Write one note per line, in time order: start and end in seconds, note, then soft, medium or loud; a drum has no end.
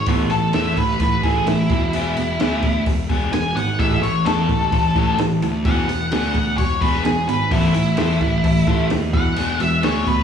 0.06 0.29 A1 medium
0.06 0.29 A2 medium
0.06 0.31 E3 medium
0.06 0.29 E3 medium
0.06 0.30 B3 loud
0.06 0.31 C4 medium
0.06 0.31 E4 medium
0.06 0.30 A4 medium
0.06 kick loud
0.06 open hi-hat medium
0.30 0.53 A1 medium
0.30 0.52 A2 medium
0.30 0.52 E3 medium
0.30 0.53 A4 medium
0.30 muted overdriven electric guitar stroke soft
0.30 open hi-hat medium
0.53 0.76 E2 medium
0.53 0.75 A2 medium
0.53 0.77 E3 medium
0.53 0.75 E3 medium
0.53 0.77 C4 medium
0.53 0.77 E4 medium
0.53 0.76 A4 medium
0.53 0.76 E5 medium
0.53 snare loud
0.53 open hi-hat medium
0.77 0.99 A1 medium
0.77 0.98 A2 medium
0.77 0.98 E3 medium
0.77 1.00 B4 medium
0.77 muted overdriven electric guitar stroke soft
0.77 kick medium
0.77 open hi-hat soft
1.00 1.22 A1 medium
1.00 1.21 A2 medium
1.00 1.22 E3 medium
1.00 1.23 B4 medium
1.00 muted overdriven electric guitar stroke soft
1.00 kick medium
1.00 open hi-hat medium
1.23 1.46 A1 medium
1.23 1.45 A2 medium
1.23 1.45 E3 medium
1.23 1.47 E3 medium
1.23 1.47 C4 medium
1.23 1.48 E4 medium
1.23 1.46 G#4 medium
1.23 1.47 A4 medium
1.23 kick medium
1.23 open hi-hat medium
1.47 1.69 A1 medium
1.47 1.68 A2 medium
1.47 1.68 E3 medium
1.47 2.82 E4 loud
1.47 muted overdriven electric guitar stroke soft
1.47 snare loud
1.47 open hi-hat medium
1.70 1.92 E1 medium
1.70 1.92 E2 medium
1.70 1.92 B2 medium
1.70 1.93 E3 loud
1.70 muted overdriven electric guitar stroke soft
1.70 kick loud
1.70 open hi-hat medium
1.93 2.15 E1 medium
1.93 2.14 E2 medium
1.93 2.15 B2 medium
1.93 2.17 B3 medium
1.93 2.17 D4 medium
1.93 2.16 G#4 medium
1.93 open hi-hat medium
2.17 2.39 E1 medium
2.17 2.38 E2 medium
2.17 2.38 B2 medium
2.17 muted overdriven electric guitar stroke soft
2.17 open hi-hat medium
2.40 2.84 D2 medium
2.40 2.61 E2 medium
2.40 2.61 B2 medium
2.40 2.63 B3 medium
2.40 2.63 D4 medium
2.40 2.63 G#4 medium
2.40 snare loud
2.40 open hi-hat medium
2.63 2.84 E2 medium
2.63 2.85 B2 medium
2.63 muted overdriven electric guitar stroke soft
2.63 kick medium
2.63 open hi-hat medium
2.86 3.31 E1 medium
2.86 3.08 E2 medium
2.86 3.08 B2 medium
2.86 muted overdriven electric guitar stroke soft
2.86 kick medium
2.86 open hi-hat medium
3.09 3.30 E2 medium
3.09 3.31 B2 medium
3.09 3.32 B3 medium
3.09 3.33 D4 medium
3.09 3.33 G#4 medium
3.09 kick medium
3.09 open hi-hat medium
3.32 3.55 E1 medium
3.32 3.54 E2 medium
3.32 3.54 B2 medium
3.32 3.56 G#5 medium
3.32 muted overdriven electric guitar stroke soft
3.32 snare loud
3.32 open hi-hat medium
3.55 3.78 G#1 medium
3.55 3.77 E2 medium
3.55 3.77 B2 medium
3.55 3.79 F#5 medium
3.55 muted overdriven electric guitar stroke soft
3.55 open hi-hat medium
3.79 4.01 A1 medium
3.79 4.00 A2 medium
3.79 4.03 E3 medium
3.79 4.01 E3 medium
3.79 4.02 G#3 medium
3.79 4.02 A3 medium
3.79 4.02 C#4 medium
3.79 4.02 A4 medium
3.79 4.02 E5 medium
3.79 kick loud
3.79 open hi-hat medium
4.02 4.24 A1 medium
4.02 4.23 A2 medium
4.02 4.23 E3 medium
4.02 4.25 C#5 medium
4.02 muted overdriven electric guitar stroke soft
4.02 open hi-hat soft
4.25 4.48 E2 medium
4.25 4.47 A2 medium
4.25 4.49 E3 medium
4.25 4.47 E3 medium
4.25 4.49 A3 medium
4.25 4.49 C#4 medium
4.25 5.16 A4 medium
4.25 4.48 A4 loud
4.25 snare loud
4.25 open hi-hat medium
4.48 4.71 A1 medium
4.48 4.70 A2 medium
4.48 4.70 E3 medium
4.48 muted overdriven electric guitar stroke soft
4.48 kick medium
4.48 open hi-hat soft
4.71 4.95 A1 medium
4.71 4.93 A2 medium
4.71 4.93 E3 medium
4.71 muted overdriven electric guitar stroke soft
4.71 kick medium
4.71 open hi-hat medium
4.95 5.17 A1 medium
4.95 5.16 A2 medium
4.95 5.16 E3 medium
4.95 5.18 E3 medium
4.95 5.19 A3 medium
4.95 5.19 C#4 medium
4.95 5.19 A4 medium
4.95 kick medium
4.95 open hi-hat soft
5.18 5.41 A1 medium
5.18 5.40 A2 medium
5.18 5.40 E3 medium
5.18 muted overdriven electric guitar stroke soft
5.18 snare loud
5.18 open hi-hat medium
5.41 5.64 D2 medium
5.41 5.63 A2 medium
5.41 5.63 E3 medium
5.41 muted overdriven electric guitar stroke soft
5.41 open hi-hat medium
5.65 5.87 E1 medium
5.65 5.87 E2 medium
5.65 5.87 B2 medium
5.65 5.87 E3 loud
5.65 5.89 B3 medium
5.65 5.89 D4 medium
5.65 5.88 G#4 medium
5.65 6.56 F#5 loud
5.65 kick loud
5.65 open hi-hat medium
5.88 6.10 E1 medium
5.88 6.09 E2 medium
5.88 6.10 B2 medium
5.88 muted overdriven electric guitar stroke soft
5.88 open hi-hat medium
6.11 6.56 D2 medium
6.11 6.32 E2 medium
6.11 6.33 B2 medium
6.11 6.35 B3 medium
6.11 6.36 D4 medium
6.11 6.35 G#4 loud
6.11 snare loud
6.11 open hi-hat medium
6.34 6.56 E2 medium
6.34 6.56 B2 medium
6.34 muted overdriven electric guitar stroke soft
6.34 kick medium
6.34 open hi-hat medium
6.58 7.03 E1 medium
6.58 6.79 E2 medium
6.58 6.80 B2 medium
6.58 6.81 C#5 loud
6.58 muted overdriven electric guitar stroke soft
6.58 kick medium
6.58 open hi-hat medium
6.81 7.03 E2 medium
6.81 7.03 B2 medium
6.81 7.03 B3 medium
6.81 7.04 D4 medium
6.81 7.04 G#4 medium
6.81 7.04 B4 medium
6.81 kick medium
6.81 open hi-hat medium
7.04 7.27 E1 medium
7.04 7.26 E2 medium
7.04 7.26 B2 medium
7.04 7.27 G#4 medium
7.04 muted overdriven electric guitar stroke soft
7.04 snare loud
7.04 open hi-hat medium
7.28 7.51 G#1 medium
7.28 7.49 E2 medium
7.28 7.49 B2 medium
7.28 7.51 B4 medium
7.28 muted overdriven electric guitar stroke medium
7.28 open hi-hat medium
7.51 7.73 A1 medium
7.51 7.73 A2 medium
7.51 7.73 E3 loud
7.51 7.75 E3 medium
7.51 7.73 B3 medium
7.51 7.75 C4 medium
7.51 7.74 E4 medium
7.51 8.87 E4 medium
7.51 7.73 A4 medium
7.51 kick loud
7.51 open hi-hat medium
7.74 7.97 A1 medium
7.74 7.95 A2 medium
7.74 7.96 E3 medium
7.74 muted overdriven electric guitar stroke medium
7.74 open hi-hat medium
7.97 8.20 E2 medium
7.97 8.19 A2 medium
7.97 8.21 E3 medium
7.97 8.19 E3 medium
7.97 8.21 C4 loud
7.97 8.21 E4 loud
7.97 8.20 A4 loud
7.97 snare loud
7.97 open hi-hat medium
8.20 8.43 A1 medium
8.20 8.42 A2 medium
8.20 8.42 E3 medium
8.20 muted overdriven electric guitar stroke soft
8.20 kick medium
8.20 open hi-hat soft
8.44 8.66 A1 medium
8.44 8.65 A2 medium
8.44 8.65 E3 medium
8.44 muted overdriven electric guitar stroke soft
8.44 kick medium
8.44 open hi-hat medium
8.67 8.89 A1 medium
8.67 8.88 A2 medium
8.67 8.88 E3 medium
8.67 8.90 E3 medium
8.67 8.90 C4 medium
8.67 8.90 E4 medium
8.67 8.90 A4 medium
8.67 kick medium
8.67 open hi-hat medium
8.90 9.13 D#2 medium
8.90 9.11 A2 medium
8.90 9.11 E3 medium
8.90 muted overdriven electric guitar stroke soft
8.90 snare loud
8.90 open hi-hat medium
9.13 9.36 E1 medium
9.13 9.35 E2 medium
9.13 9.36 B2 loud
9.13 9.36 E3 medium
9.13 9.59 F#5 loud
9.13 muted overdriven electric guitar stroke medium
9.13 kick loud
9.13 open hi-hat medium
9.37 9.59 E1 medium
9.37 9.58 E2 medium
9.37 9.58 B2 medium
9.37 9.60 B3 medium
9.37 9.60 D4 medium
9.37 9.59 G#4 medium
9.37 open hi-hat medium
9.60 9.82 E1 medium
9.60 9.81 E2 medium
9.60 9.81 B2 medium
9.60 9.83 E5 medium
9.60 muted overdriven electric guitar stroke soft
9.60 open hi-hat medium
9.83 10.23 D2 medium
9.83 10.04 E2 medium
9.83 10.04 B2 medium
9.83 10.06 B3 loud
9.83 10.06 D4 loud
9.83 10.06 G#4 medium
9.83 10.06 C#5 medium
9.83 snare loud
9.83 open hi-hat medium
10.07 10.23 E2 medium
10.07 10.23 B2 medium
10.07 10.23 B4 medium
10.07 muted overdriven electric guitar stroke medium
10.07 kick medium
10.07 open hi-hat medium